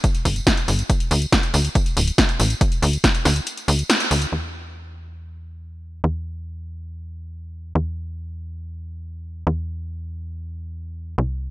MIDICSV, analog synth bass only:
0, 0, Header, 1, 2, 480
1, 0, Start_track
1, 0, Tempo, 428571
1, 1004, Time_signature, 4, 2, 24, 8
1, 12884, End_track
2, 0, Start_track
2, 0, Title_t, "Analog synth bass"
2, 0, Program_c, 0, 38
2, 283, Note_on_c, 0, 31, 91
2, 454, Note_off_c, 0, 31, 0
2, 763, Note_on_c, 0, 31, 94
2, 934, Note_off_c, 0, 31, 0
2, 1243, Note_on_c, 0, 38, 103
2, 1414, Note_off_c, 0, 38, 0
2, 1723, Note_on_c, 0, 38, 85
2, 1894, Note_off_c, 0, 38, 0
2, 2204, Note_on_c, 0, 26, 92
2, 2374, Note_off_c, 0, 26, 0
2, 2684, Note_on_c, 0, 33, 91
2, 2854, Note_off_c, 0, 33, 0
2, 3164, Note_on_c, 0, 38, 104
2, 3334, Note_off_c, 0, 38, 0
2, 3644, Note_on_c, 0, 38, 88
2, 3814, Note_off_c, 0, 38, 0
2, 4123, Note_on_c, 0, 38, 98
2, 4293, Note_off_c, 0, 38, 0
2, 4603, Note_on_c, 0, 38, 89
2, 4773, Note_off_c, 0, 38, 0
2, 4844, Note_on_c, 0, 40, 86
2, 6740, Note_off_c, 0, 40, 0
2, 6764, Note_on_c, 0, 40, 89
2, 8660, Note_off_c, 0, 40, 0
2, 8684, Note_on_c, 0, 40, 85
2, 10580, Note_off_c, 0, 40, 0
2, 10604, Note_on_c, 0, 40, 86
2, 12500, Note_off_c, 0, 40, 0
2, 12523, Note_on_c, 0, 36, 89
2, 12884, Note_off_c, 0, 36, 0
2, 12884, End_track
0, 0, End_of_file